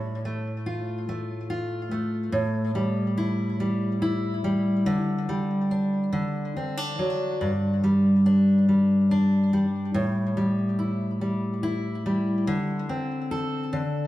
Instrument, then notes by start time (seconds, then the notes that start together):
steel-string acoustic guitar
Already playing: A2
0.25 A3
0.66 F4
1.09 A3
1.50 F4
1.91 A3
2.32 A2
2.75 G3
3.17 E4
3.60 G3
4.02 E4
4.44 G3
4.86 D3
5.29 G3
5.71 D4
6.13 D3
6.57 C4
6.77 D4
6.99 F#3
7.41 G2
7.84 G3
8.26 D4
8.69 G3
9.11 D4
9.53 G3
9.94 A2
10.37 G3
10.79 E4
11.21 G3
11.63 E4
12.06 G3
12.47 D3
12.89 C4
13.31 A4
13.73 D3